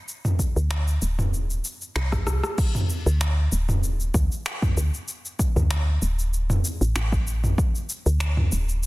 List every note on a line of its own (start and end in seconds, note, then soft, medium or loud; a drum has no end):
0.08 shaker soft
0.25 mid tom medium
0.25 shaker soft
0.39 kick medium
0.39 shaker medium
0.56 0.98 D2 loud
0.56 shaker soft
0.71 finger snap medium
0.71 shaker soft
0.88 shaker soft
1.02 1.61 D1 medium
1.02 shaker medium
1.19 mid tom medium
1.19 shaker soft
1.34 shaker soft
1.50 shaker soft
1.65 shaker medium
1.81 shaker soft
1.96 2.14 C2 medium
1.96 finger snap loud
1.96 shaker soft
2.12 2.25 A1 loud
2.12 kick loud
2.12 cross-stick soft
2.12 mid tom medium
2.12 shaker soft
2.27 2.41 C2 medium
2.27 cross-stick medium
2.27 shaker medium
2.44 cross-stick medium
2.44 shaker soft
2.58 kick loud
2.58 crash loud
2.58 shaker soft
2.75 mid tom medium
2.75 shaker soft
2.90 shaker medium
3.06 3.48 D2 loud
3.06 shaker soft
3.21 finger snap loud
3.21 shaker soft
3.52 4.11 D1 medium
3.52 shaker medium
3.69 mid tom medium
3.69 shaker soft
3.84 shaker soft
4.00 shaker soft
4.14 4.29 D2 medium
4.14 kick loud
4.14 shaker medium
4.32 shaker soft
4.46 finger snap loud
4.46 shaker soft
4.62 kick loud
4.62 mid tom medium
4.62 shaker soft
4.77 4.91 D2 medium
4.77 shaker medium
4.94 shaker soft
5.08 shaker soft
5.25 shaker soft
5.39 kick medium
5.39 shaker medium
5.56 5.98 D2 loud
5.56 mid tom medium
5.56 shaker soft
5.71 finger snap loud
5.71 shaker soft
6.02 6.61 D1 medium
6.02 shaker medium
6.19 shaker soft
6.34 shaker soft
6.50 mid tom medium
6.50 shaker soft
6.65 shaker medium
6.81 6.93 A1 loud
6.81 shaker soft
6.96 7.55 A1 loud
6.96 finger snap loud
6.96 shaker soft
7.12 kick loud
7.12 shaker soft
7.27 shaker medium
7.44 mid tom medium
7.44 shaker soft
7.58 kick loud
7.58 shaker soft
7.75 shaker soft
7.90 shaker medium
8.06 8.48 D2 loud
8.06 shaker soft
8.20 finger snap loud
8.20 shaker soft
8.37 mid tom medium
8.52 8.86 D1 medium
8.52 shaker medium
8.69 shaker soft